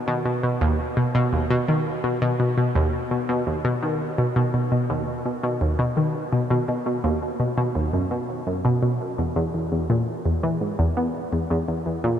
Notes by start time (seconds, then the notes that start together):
0.08 B2
0.26 B2
0.43 B2
0.61 D#2
0.97 B2
1.15 B2
1.33 D#2
1.50 B2
1.68 D#3
2.04 B2
2.22 B2
2.40 B2
2.58 B2
2.75 D#2
3.11 B2
3.29 B2
3.47 D#2
3.65 B2
3.83 D#3
4.18 B2
4.36 B2
4.54 B2
4.72 B2
4.90 D#2
5.25 B2
5.43 B2
5.61 D#2
5.79 B2
5.97 D#3
6.33 B2
6.50 B2
6.68 B2
6.86 B2
7.04 D#2
7.40 B2
7.58 B2
7.75 D#2
7.93 F#2
8.11 B2
8.47 F#2
8.65 B2
8.83 B2
9.18 E2
9.36 E2
9.54 E2
9.72 E2
9.90 A#2
10.26 E2
10.43 E3
10.61 G#2
10.79 E2
10.97 B3
11.33 E2
11.50 E2
11.68 E2
11.86 E2
12.04 A#2